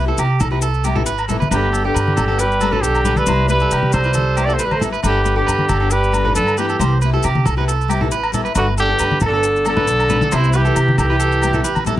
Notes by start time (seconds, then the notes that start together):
Already playing: C2
0.06 B3 E4 G4 A4
0.18 C3 G4, low agogo, maracas
0.40 C2 A4, high conga, low conga, low agogo, maracas
0.51 B3 E4 G4 B4
0.62 A4, maracas
0.74 maracas
0.84 G3 B3 E4 G4, muted steel-string acoustic guitar stroke, low agogo, maracas
0.95 B3 E4 G4 A4, low conga
1.06 G#1 B4, maracas
1.18 low agogo, maracas
1.28 G3 B3 E4 G4 A4, low conga, maracas
1.40 B4, high conga, maracas
1.51 G1 D3 G3 B3 D4 G4 A4 B4, low agogo, maracas
1.72 G3 B3 D4 A4, muted steel-string acoustic guitar stroke, maracas
1.84 D3 B3 D4 G4 A4
1.94 G2 B4, low agogo, maracas
2.08 high conga
2.17 G1 A4, high conga, low conga, low agogo, maracas
2.28 B3 D4 A4
2.38 G3 G4 B4, maracas
2.52 maracas
2.61 G3 B3 D4 A4, low agogo, maracas
2.71 B3 D4 A4 B4, low conga
2.75 F#3
2.81 B1 D3 G4 A4, maracas
2.95 low agogo, maracas
3.05 G3 B3 D4 A4 B4, low conga, maracas
3.16 G3 A4 B4, high conga, maracas
3.26 C2 G3 B3 E4 G4 C5, low agogo, maracas
3.48 G3 B3 E4 G4 B4, maracas
3.58 B3 E4 G4 A4, maracas
3.71 C3 G4, low agogo, maracas
3.83 high conga
3.92 C2 G3 A4 C5, high conga, low conga, low agogo, maracas
4.03 B3 E4 G4 B4, maracas
4.13 A4, high conga, maracas
4.35 B3 E4 G4, muted steel-string acoustic guitar stroke, low agogo, maracas
4.45 B3 E4 G4 A4 D5
4.49 B3 C5, maracas
4.56 A1 A3 B4, maracas
4.64 G3 B4
4.71 A3 C5, high conga, low agogo
4.80 G3 B3 E4 G4 A4, low conga, maracas
4.93 B4, maracas
5.03 G1 G3 B3 D4 G4 A4 B4, low agogo, maracas
5.08 D3
5.24 G3 B3 D4 B4, maracas
5.36 B3 D4 G4 A4
5.40 D3
5.47 G2 B4, low agogo, maracas
5.59 high conga
5.69 G1 A4, high conga, low conga, low agogo, maracas
5.80 B3 D4 A4
5.91 G3 G4 B4, maracas
6.04 maracas
6.12 G3 B3 D4 A4, low agogo, maracas
6.24 B3 D4 A4 B4, low conga
6.35 G2 D3 A4 B4, maracas
6.47 low agogo, maracas
6.57 E3 G3 B3 D4 G4 A4 B4, maracas
6.69 A4, maracas
6.79 C2 G3 B3 G4 C5, muted steel-string acoustic guitar stroke, low agogo, maracas
7.02 G3 B3 E4 G4 B4, maracas
7.13 B3 E4 G4 A4
7.23 C3 G4, low agogo, maracas
7.35 high conga
7.45 C2 A4, high conga, low conga, low agogo, maracas
7.57 B3 E4 G4 B4
7.68 A4, maracas
7.81 maracas
7.88 G3 B3 E4 G4, low agogo, maracas
8.01 B3 E4 G4 A4, low conga
8.11 A1 B4, maracas
8.23 low agogo
8.32 G3 B3 E4 G4 A4, low conga, maracas
8.45 B4, maracas
8.55 G1 D3 G3 B3 D4 F#4 A4 B4, low agogo, maracas
8.77 D3 G3 D4 G4 A4, maracas
8.89 B3 D4 G4 A4
8.99 G2 B4, low agogo, maracas
9.11 high conga
9.20 G1 A4, high conga, low conga, low agogo, maracas
9.25 D3 A4
9.33 B3 D4 A4
9.43 muted clean electric guitar stroke, maracas
9.56 maracas
9.64 G3 B3 D4 A4, low agogo, maracas
9.69 D3
9.76 B3 D4 A4 B4, low conga
9.88 B1, maracas
10.00 low agogo, maracas
10.08 G3 B3 D4 B4, low conga, maracas
10.21 A4, high conga, maracas
10.31 C2 G3 B3 E4 G4 C5, low agogo, maracas
10.37 C3
10.44 maracas
10.53 G3 B3 E4 G4 B4, maracas
10.58 E3
10.65 B3 E4 G4 A4, maracas
10.76 C3 G4, low agogo, maracas
10.88 high conga
10.98 C2 G4 A4, high conga, low conga, low agogo, maracas
11.04 E3
11.10 B3 E4 G4 B4
11.20 A4, maracas
11.32 maracas
11.42 G3 B3 E4 G4, low agogo, maracas
11.53 B3 E4 G4 A4, low conga, maracas
11.64 A1 B4, maracas
11.75 high conga, low agogo, maracas
11.85 G3 B3 E4 G4 A4, low conga, maracas